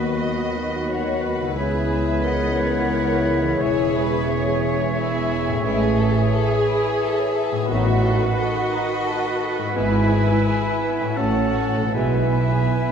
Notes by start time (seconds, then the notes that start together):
Already playing: D#2 D#3 F#3 B3 D#4 F#4 B4 D#5
0.21 D#5
0.89 C#5 F#5
1.21 B4
1.38 C#3
1.43 E4
1.47 G#4
1.52 E3 B4
1.56 C#2 E3 G#3 B3 E4 G#4 B4 C#5 E5
1.91 E5
2.23 A#4 D#5 F#5
2.59 C#5
3.44 E3
3.48 E4
3.53 G#4
3.57 G#4 C#5
3.61 E1 E2 C#4 C#5 E5
3.97 B4
4.29 G#4 C#5
4.64 C#5
4.97 E4 G#4 E5
5.47 A2
5.51 E4
5.56 G#4
5.60 E3 G#3 C#4 E4 C#5
5.64 A1 A2 E3 E4 G#4 E5
5.82 G#4
5.98 A4
6.17 C#5
6.34 A4
6.52 G#4
6.69 E4
6.86 G#4
7.02 A4
7.21 C#5
7.36 A4
7.51 A2 G#4
7.56 D#4
7.60 F#4
7.65 B3 F#4 B4
7.69 A1 A2 D#3 F#3 D#4 F#4 B4 F#5
7.87 F#4
8.05 A4
8.22 B4
8.39 A4 D#5
8.55 F#4
8.71 D#4
8.87 F#4
9.06 A4
9.23 B4
9.38 A4
9.57 G#2 F#4
9.62 E4
9.67 G#4
9.71 B3 E4 B4
9.75 G#1 G#2 E3 G#3 B3 E4 E5 G#5
9.91 E4
10.10 G#4
10.27 B4
10.45 G#4
10.64 E4
10.82 B3
11.00 A2 E4
11.04 C#4
11.09 F#4
11.13 C#4 A4 F#5
11.17 A1 A2 F#3 A3 C#4 F#4 A5
11.36 C#4
11.55 F#4
11.74 B2 A4
11.80 B3
11.85 E4
11.89 G#3 G#4
11.93 B1 B2 E3 G#3 B3 E4 B4 E5 G#5
12.14 B3
12.34 E4
12.53 G#4
12.71 E4